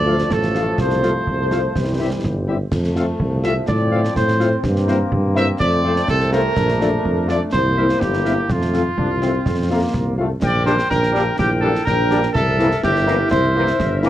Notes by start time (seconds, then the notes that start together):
Already playing: D2 F3 A3 D5
0.07 F3 A3 F4 A4 F5
0.18 snare
0.30 A1 A4, concert bass drum, snare
0.42 snare
0.55 F3 A3 F4 A4 F5, snare
0.78 C2 C5, concert bass drum, snare
0.90 snare
1.03 F3 A3 F4 A4 F5, snare
1.27 C2, concert bass drum
1.51 F3 A3 F4 A4 F5, snare
1.75 C2 E3 G3, concert bass drum, snare
1.99 G3 C4 E4 G4 E5
2.24 G1, concert bass drum, snare
2.48 G3 C4 E4 G4 E5
2.72 F2 F3 A3, concert bass drum, snare, crash
2.84 snare
2.96 A3 C4 F4 A4 F5, snare
3.20 C2, concert bass drum
3.44 A3 C4 F4 A4 E5 F5, snare
3.67 A2 C4 D5, concert bass drum, snare
3.92 A3 C4 F4 A4 F5
4.05 snare
4.15 A2 C5, concert bass drum, snare
4.28 snare
4.40 A3 C4 F4 A4 F5, snare
4.64 G2 A#3, concert bass drum, snare
4.76 snare
4.88 A#3 C4 E4 A#4 C5, snare
5.12 G2, concert bass drum
5.35 A#3 C4 E4 A#4 C5 E5, snare
5.59 F2 A3 C4 D5, concert bass drum, snare
5.84 A3 C4 F4 A4 C5
5.96 snare
6.07 C2 A4, concert bass drum, snare
6.20 snare
6.32 A3 C4 F4 A4 A#4 C5, snare
6.57 A#1 D4, concert bass drum, snare, crash
6.69 snare
6.81 A3 D4 F4 A4 D5, snare
7.04 F2, concert bass drum
7.28 A3 D4 F4 A4 D5, snare
7.52 C2 A#3 E4 C5, concert bass drum, snare
7.77 A#3 C4 E4 A#4 E5
7.89 snare
8.00 G1 G4, concert bass drum, snare
8.14 snare
8.24 A#3 C4 E4 A#4 E5, snare
8.49 F2 A3 F4, concert bass drum, snare
8.61 snare
8.73 A3 C4 F4 A4 F5, snare
8.98 C2 D4, concert bass drum
9.22 A3 C4 F4 A4 F5, snare
9.45 F2, concert bass drum, snare
9.70 A3 A#3 C4 F4 A4 F5
9.94 C2, concert bass drum, snare
10.18 A3 C4 F4 A4 F5
10.42 A#1 A#4 D5 G5, concert bass drum, snare, crash
10.66 G3 A#3 D4 G4 C5, snare
10.79 snare
10.90 A#1 D4 A#4 G5, concert bass drum, snare
11.03 snare
11.12 G3 A#3 D4 G4, snare
11.38 A#1 E4 G4 A#4 G5, concert bass drum, snare
11.61 G3 A#3 D4 G4 A4
11.75 snare
11.85 A#1 D4 A#4 G5, concert bass drum, snare
12.10 G3 A#3 D4 G4, snare
12.23 snare
12.33 C2 C4 A4 A#4 E5, concert bass drum, snare
12.59 E3 A#3 C4 E4, snare
12.72 snare
12.82 G1 E4 G4 A#4 E5, concert bass drum, snare
12.96 snare
13.07 E3 A#3 C4 E4, snare
13.31 C2 A#4 C5 E5, concert bass drum, snare
13.55 E3 A#3 C4 E4
13.67 snare
13.78 G1 D4, concert bass drum, snare
14.02 E3 A#3 C4 E4, snare